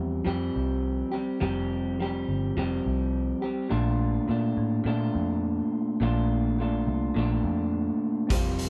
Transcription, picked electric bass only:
Already playing: E2
0.27 F2
0.56 C2
1.42 F1
2.29 G1
2.57 F1
2.86 C2
3.72 A#1
4.29 A#2
4.57 A2
4.85 A#2
5.15 F2
6.01 A#1
6.87 C2
7.16 A#1
7.44 F2
8.31 F1

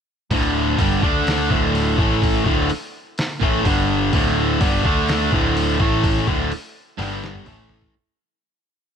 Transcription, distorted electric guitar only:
0.31 D2 A2 D3
0.78 G2 D3 G3
1.02 D3 A3 D4
1.49 D2 A2 D3
1.98 A2 E3 A3
2.45 D2 A2 D3
3.39 A2 E3 A3
3.63 G2 D3 G3
4.13 D2 A2 D3
4.61 G2 D3 G3
4.83 D3 A3 D4
5.31 D2 A2 D3
5.78 A2 E3 A3
6.28 D2 A2 D3
6.97 G2 D3 G3
7.47 A2 E3 A3

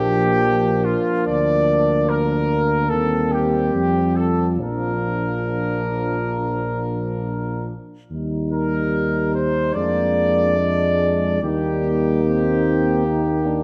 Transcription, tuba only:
Already playing: A#1
1.28 D2
2.92 D#2
3.74 F2
4.60 A#1
8.11 D#2
9.76 F2
11.43 D#2

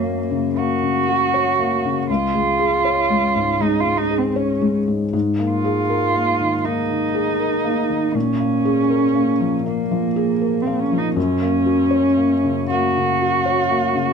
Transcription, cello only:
Already playing: A#3
0.56 F#4
2.10 F4
3.61 D#4
3.80 F4
3.97 D#4
4.18 C4
4.36 C#4
5.51 F4
6.65 D#4
8.15 C#4
9.67 A#3
10.62 C4
10.79 C#4
10.98 D#4
11.15 C#4
12.70 F#4

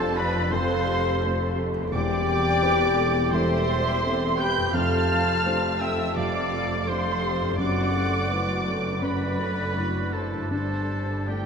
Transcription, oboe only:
Already playing: A4
0.17 B4
0.52 C5
1.92 D5
3.32 C5
4.39 G5
4.74 F5
5.80 E5
6.17 D5
6.88 C5
7.58 D5
9.02 B4
10.13 A4
10.51 A4
11.29 G4

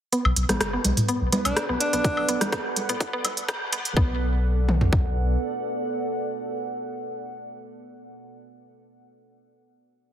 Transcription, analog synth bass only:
0.25 B1
0.36 B1
0.49 A1
0.60 F#1
0.85 B1
1.21 B1
1.45 B1
1.69 B1
1.93 B1
2.17 B1
2.28 B1
2.41 A1
2.52 F#1
2.77 B1
3.13 B1
3.25 B1
3.37 D2
3.85 C#2
3.97 B1

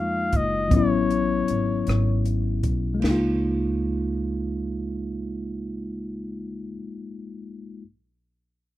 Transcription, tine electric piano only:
Already playing: G#3 A#3 D#4 F4
0.68 F#3 B3
0.74 C#4 E4
2.94 G#3
3.00 A#3
3.05 D#4
3.11 F4

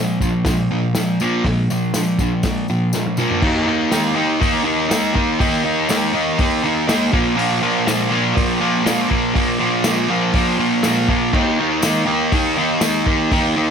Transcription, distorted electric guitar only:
Already playing: A#2 F3
0.21 A#2 F3
0.46 A#2 F3
0.71 A#2 F3
0.96 A#2 F3
1.21 A#2 F3 A#3
1.45 A#2 F3
1.70 A#2 F3
1.95 A#2 F3
2.20 A#2 F3
2.44 A#2 F3
2.70 A#2 F3
2.94 A#2 F3
3.18 A#2 F3 A#3
3.42 D#3 A#3 D#4
3.67 D#3 A#3 D#4
3.91 D#3 A#3 D#4
4.15 D#3 A#3 D#4
4.40 D#3 A#3 D#4
4.64 D#3 A#3 D#4
4.89 D#3 A#3 D#4
5.14 D#3 A#3 D#4
5.39 D#3 A#3 D#4
5.64 D#3 A#3 D#4
5.89 D#3 A#3 D#4
6.14 D#3 A#3 D#4
6.39 D#3 A#3 D#4
6.63 D#3 A#3 D#4
6.87 D#3 A#3 D#4
7.12 A#2 F3 A#3
7.36 A#2 F3 A#3
7.62 A#2 F3 A#3
7.87 A#2 F3 A#3
8.10 A#2 F3 A#3
8.35 A#2 F3 A#3
8.60 A#2 F3 A#3
8.84 A#2 F3 A#3
9.10 A#2 F3 A#3
9.35 A#2 F3 A#3
9.59 A#2 F3 A#3
9.85 A#2 F3 A#3
10.09 A#2 F3 A#3
10.34 A#2 F3 A#3
10.58 A#2 F3 A#3
10.84 A#2 F3 A#3
11.09 A#2 F3 A#3
11.33 D#3 A#3 D#4
11.59 D#3 A#3 D#4
11.83 D#3 A#3 D#4
12.06 D#3 A#3 D#4
12.33 D#3 A#3 D#4
12.57 D#3 A#3 D#4
12.81 D#3 A#3 D#4
13.07 D#3 A#3 D#4
13.32 D#3 A#3 D#4
13.56 D#3 A#3 D#4

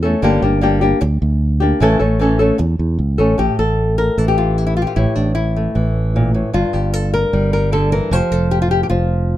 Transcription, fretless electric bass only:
Already playing: E2
0.23 G1
0.42 G1
1.02 D2
1.22 D2
1.81 A1
2.00 A1
2.60 E2
2.79 E2
2.99 C#2
3.19 A1
3.39 A1
3.59 A1
4.18 A1
4.97 A1
5.17 A1
5.76 A1
6.54 G1
6.74 G1
7.33 G1
8.11 F1
8.32 F1
8.91 F1

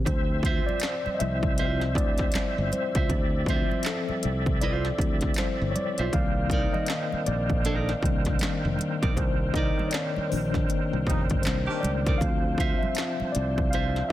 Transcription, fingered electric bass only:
0.07 D2
0.68 muted fingered electric bass stroke
1.06 muted fingered electric bass stroke
1.21 C2
1.96 D2
2.35 muted fingered electric bass stroke
2.58 G1
2.96 C#2
3.10 D2
3.72 muted fingered electric bass stroke
4.09 muted fingered electric bass stroke
4.25 C2
4.99 D2
5.39 muted fingered electric bass stroke
5.62 G1
5.99 B1
6.13 C2
6.75 muted fingered electric bass stroke
7.13 muted fingered electric bass stroke
7.28 A#1
8.03 C2
8.42 muted fingered electric bass stroke
8.65 F1
9.03 B1
9.18 C2
9.80 muted fingered electric bass stroke
10.18 muted fingered electric bass stroke
10.33 A#1
10.93 C2
11.07 F1
11.31 G1
11.47 C2
11.84 C#2
12.22 D2
12.84 muted fingered electric bass stroke
13.21 muted fingered electric bass stroke
13.36 C2

